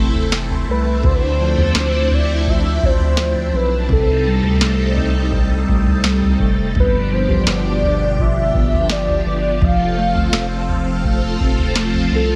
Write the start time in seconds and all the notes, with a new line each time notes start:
Already playing: F1 F2 E3 A3 C4 E4 A4
0.15 floor tom
0.32 E3, snare
0.50 floor tom
0.68 C2 A3 B4
1.03 D2 D3 C4 D4 E4 C5, kick, floor tom
1.14 B4
1.21 C5
1.40 F3
1.58 E2, floor tom
1.75 D2 C4, snare
2.11 E4 D5, floor tom
2.47 F3 E5, kick
2.83 D2 C4 C5, kick
3.00 floor tom
3.17 F3, snare
3.35 floor tom
3.53 B1 C4 B4
3.89 C2 C3 G3 C4 D#4 A4, kick, floor tom
4.26 G3
4.43 D2, floor tom
4.61 C2 A3, snare
4.97 D#4, floor tom
5.33 G3, kick
5.68 C2 A3, kick
5.86 floor tom
6.03 G3, snare
6.22 floor tom
6.40 F1 A3, kick
6.75 G1 G2 B2 F3 D4 G4, kick, floor tom
6.80 B4
7.12 F3 C5
7.29 A1, floor tom
7.47 G1 B3 D5, snare
7.83 D4, floor tom
8.19 F3 E5, kick
8.55 G1 B3, kick
8.73 floor tom
8.89 F3 D5, snare
9.08 floor tom
9.25 G1 B3
9.61 F1 F3 C4 F4 A4 F5, kick, floor tom
9.97 A3
10.15 G1, floor tom
10.32 F1 C4, snare
10.69 floor tom
11.05 A3, kick
11.40 F1 C4, kick
11.58 floor tom
11.76 A3, snare
11.94 floor tom
12.11 C2 C4
12.15 A4